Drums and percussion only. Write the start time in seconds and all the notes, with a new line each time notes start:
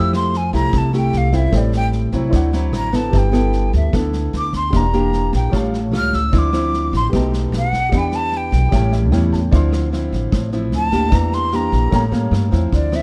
0.13 cross-stick, snare
0.33 snare
0.53 kick, snare
0.73 kick, cross-stick, snare
0.93 snare
1.13 snare
1.32 kick, snare
1.52 kick, cross-stick, snare
1.72 snare
1.92 snare
2.12 kick, snare
2.32 kick, cross-stick, snare
2.53 snare
2.73 cross-stick, snare
2.93 kick, snare
3.13 kick, snare
3.33 cross-stick, snare
3.53 snare
3.73 kick, snare
3.93 kick, cross-stick, snare
4.13 snare
4.33 snare
4.53 kick, snare
4.73 kick, cross-stick, snare
4.93 snare
5.13 snare
5.33 kick, snare
5.53 kick, cross-stick, snare
5.74 snare
5.93 cross-stick, snare
6.13 kick, snare
6.33 kick, snare
6.53 cross-stick, snare
6.73 snare
6.93 kick, snare
7.13 kick, cross-stick, snare
7.33 snare
7.53 snare
7.73 kick, snare
7.92 kick, cross-stick, snare
8.12 snare
8.32 snare
8.52 kick, snare
8.72 kick, cross-stick, snare
8.92 snare
9.12 cross-stick, snare
9.33 kick, snare
9.52 kick, snare
9.73 cross-stick, snare
9.93 snare
10.13 kick, snare
10.32 kick, cross-stick, snare
10.53 snare
10.72 snare
10.92 kick, snare
11.12 kick, cross-stick, snare
11.32 snare
11.52 snare
11.72 kick, snare
11.92 kick, cross-stick, snare
12.13 snare
12.33 cross-stick, snare
12.52 kick, snare
12.72 kick, snare
12.92 cross-stick, snare